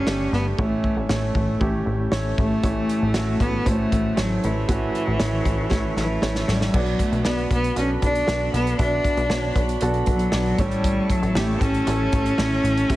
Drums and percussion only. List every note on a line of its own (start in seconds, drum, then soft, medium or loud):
0.07 snare medium
0.33 snare soft
0.59 kick medium
0.84 kick medium
1.09 snare loud
1.35 kick medium
1.61 kick medium
2.12 snare medium
2.38 kick medium
2.64 kick medium
2.64 closed hi-hat medium
2.89 closed hi-hat medium
3.14 snare loud
3.14 closed hi-hat medium
3.40 kick medium
3.40 closed hi-hat soft
3.66 kick medium
3.66 closed hi-hat medium
3.92 kick medium
3.92 closed hi-hat medium
4.17 snare loud
4.17 closed hi-hat medium
4.44 closed hi-hat medium
4.69 kick medium
4.69 closed hi-hat medium
4.95 closed hi-hat medium
5.20 snare loud
5.20 closed hi-hat medium
5.45 kick medium
5.45 closed hi-hat medium
5.71 kick medium
5.71 snare soft
5.97 snare medium
6.22 snare medium
6.35 snare medium
6.48 snare medium
6.61 snare medium
6.74 kick medium
6.74 crash medium
6.86 closed hi-hat soft
6.99 kick medium
6.99 closed hi-hat medium
7.13 closed hi-hat soft
7.25 snare loud
7.38 closed hi-hat soft
7.51 kick medium
7.51 closed hi-hat medium
7.64 closed hi-hat soft
7.76 closed hi-hat medium
8.02 kick medium
8.02 closed hi-hat medium
8.15 closed hi-hat soft
8.28 snare medium
8.54 snare soft
8.54 closed hi-hat medium
8.67 closed hi-hat soft
8.79 kick medium
8.79 closed hi-hat medium
9.04 kick medium
9.04 closed hi-hat medium
9.17 closed hi-hat soft
9.30 snare loud
9.56 kick medium
9.56 closed hi-hat medium
9.69 closed hi-hat soft
9.81 closed hi-hat medium
9.94 closed hi-hat soft
10.06 kick medium
10.06 closed hi-hat medium
10.19 closed hi-hat soft
10.32 snare loud
10.46 closed hi-hat soft
10.59 kick medium
10.59 closed hi-hat medium
10.71 closed hi-hat soft
10.84 kick medium
10.84 closed hi-hat medium
11.10 kick medium
11.10 closed hi-hat medium
11.23 closed hi-hat soft
11.35 snare loud
11.61 kick medium
11.61 closed hi-hat medium
11.74 closed hi-hat soft
11.87 closed hi-hat medium
12.12 kick medium
12.12 closed hi-hat medium
12.26 closed hi-hat medium
12.38 snare medium
12.52 closed hi-hat soft
12.65 closed hi-hat medium
12.77 closed hi-hat medium
12.90 kick medium
12.90 closed hi-hat medium